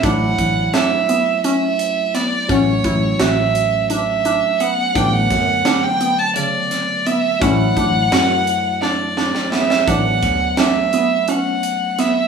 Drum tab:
HH |x-x-x-x-x-x-x-|x-x-x-x-x-x-x-|x-x-x-x-x-x-x-|x-x-x-x-------|
SD |----o-------o-|----o---------|--o-o-----o---|----o---o-oooo|
BD |o-o-----------|o-o-----------|o-o-----------|o-o-----------|

HH |x-x-x-x-x-x-x-|
SD |--o-o-------o-|
BD |o-o-----------|